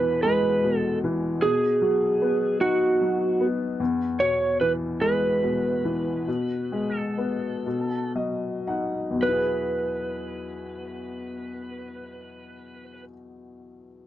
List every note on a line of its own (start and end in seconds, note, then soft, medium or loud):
0.00 1.39 E2 soft
0.00 0.62 B2 soft
0.00 1.02 E3 soft
0.00 0.21 B4 medium
0.23 1.39 G#3 soft
0.23 0.78 B4 medium
0.64 1.40 B2 soft
0.78 0.99 A4 medium
1.04 1.42 E3 soft
1.42 3.76 B2 soft
1.42 2.61 G#4 medium
1.82 3.00 F#3 soft
2.22 3.39 B3 soft
2.60 3.76 D#4 soft
2.60 3.46 F#4 medium
3.01 3.78 F#3 soft
3.40 3.79 B3 soft
3.80 6.23 E2 soft
4.20 5.41 B2 soft
4.20 4.57 C#5 medium
4.61 5.83 E3 soft
4.61 4.72 B4 medium
5.01 6.24 G#3 soft
5.01 7.00 B4 medium
5.43 6.25 B2 soft
5.85 6.26 E3 soft
6.27 7.62 B2 soft
6.72 7.63 G#3 soft
7.00 8.12 A4 medium
7.18 7.64 B3 soft
7.66 9.13 B2 soft
8.15 9.18 F#3 soft
8.15 8.64 D#5 soft
8.67 9.20 D#4 soft
8.67 9.18 F#5 soft
9.11 12.92 E2 soft
9.15 12.96 B2 soft
9.19 13.01 F#3 soft
9.19 13.04 B4 soft
9.24 13.05 B3 soft
9.29 13.10 E4 soft
9.33 13.14 G#4 soft